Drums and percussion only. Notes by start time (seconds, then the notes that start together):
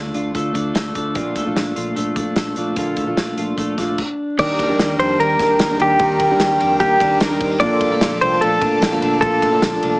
0.14 closed hi-hat
0.35 kick, closed hi-hat
0.55 kick, closed hi-hat
0.75 snare, closed hi-hat
0.95 kick, closed hi-hat
1.15 kick, closed hi-hat
1.36 kick, closed hi-hat
1.56 snare, closed hi-hat
1.76 closed hi-hat
1.96 closed hi-hat
2.16 kick, closed hi-hat
2.36 snare, closed hi-hat
2.56 closed hi-hat
2.76 kick, closed hi-hat
2.96 kick, closed hi-hat
3.17 snare, closed hi-hat
3.37 closed hi-hat
3.58 kick, closed hi-hat
3.78 kick, snare, closed hi-hat
3.98 kick, crash
4.39 kick, crash
4.59 kick, ride
4.79 snare, ride
5.00 ride
5.20 ride
5.39 kick, snare, ride
5.59 snare, ride
5.80 ride
5.99 kick, ride
6.20 kick, ride
6.40 snare, ride
6.60 ride
6.80 kick, ride
7.00 kick, ride
7.20 snare, ride
7.41 kick, ride
7.60 kick, ride
7.81 kick, ride
8.01 snare, ride
8.22 ride
8.42 ride
8.61 kick, ride
8.82 snare, ride
9.02 ride
9.22 kick, ride
9.42 kick, ride
9.62 snare, ride
9.83 ride